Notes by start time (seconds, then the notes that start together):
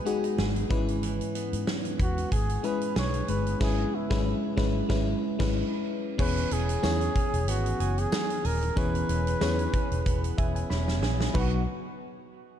Already playing: G#2 F#3 G#3 B3 D#4 F#4 G#4 B4
0.05 G#3 C#4 D#4 F#4 G#4, closed hi-hat
0.24 D#4, closed hi-hat
0.38 G#1 G#4, snare
0.56 closed hi-hat
0.69 G#1 G#2 E3 G#3 C#4 E4 B4, kick, closed hi-hat
0.88 closed hi-hat
1.03 E3, closed hi-hat
1.21 closed hi-hat
1.35 B3, closed hi-hat
1.53 G#2, closed hi-hat
1.67 C#4, snare
1.85 closed hi-hat
2.00 E2 B3 F#4, kick, closed hi-hat
2.18 closed hi-hat
2.32 G#1 G#4, kick, closed hi-hat
2.49 closed hi-hat
2.63 G#3 C#4 E4 B4, closed hi-hat
2.81 closed hi-hat
2.96 B1 G#4 C#5, snare
3.14 closed hi-hat
3.28 G1 G#3 B3 B4, closed hi-hat
3.47 closed hi-hat
3.60 G#1 G#3 C#4 E4 G#4 B4, kick, snare, crash
3.95 E4
4.10 G#1 G#3 C#4 E4 B4, kick, snare
4.56 G#1 G#3 C#4 E4 B4, kick, snare
4.89 G#1 G#3 C#4 E4 B4, kick, snare
5.39 G#1 G#3 C#4 E4 B4, kick, snare, crash
6.18 E1 E3 B3 C#4 E4 G#4 B4 C#5, kick, crash
6.37 closed hi-hat
6.51 E1 C#4 G#4, closed hi-hat
6.69 closed hi-hat
6.82 E2 B3 C#4 E4 G#4 C#5, snare, tambourine
7.01 closed hi-hat
7.15 C#4, kick, closed hi-hat
7.33 E1, closed hi-hat
7.48 G#1 B3 F#4, closed hi-hat
7.66 closed hi-hat
7.80 F#1 G#4, closed hi-hat
7.98 G#4, closed hi-hat
8.12 C#4, snare, tambourine
8.30 closed hi-hat
8.45 D#1 G#4 A#4, open hi-hat
8.63 closed hi-hat
8.76 E1 E3 B3 C#4 E4 G#4 B4 C#5, kick, closed hi-hat
8.95 closed hi-hat
9.09 E1 C#4, closed hi-hat
9.27 closed hi-hat
9.41 E2 B3 C#4 E4 G#4 C#5, snare, tambourine
9.59 closed hi-hat
9.74 C#4, kick, closed hi-hat
9.91 E1, closed hi-hat
10.06 E1 B3, kick, closed hi-hat
10.24 closed hi-hat
10.38 E1 G#4 E5, kick, closed hi-hat
10.55 G#5, closed hi-hat
10.70 E1 C#4 B5, snare
10.88 snare
11.02 A#1 G#4, snare
11.21 snare
11.34 B1 F#3 B3 D#4 F#4 B4, kick, crash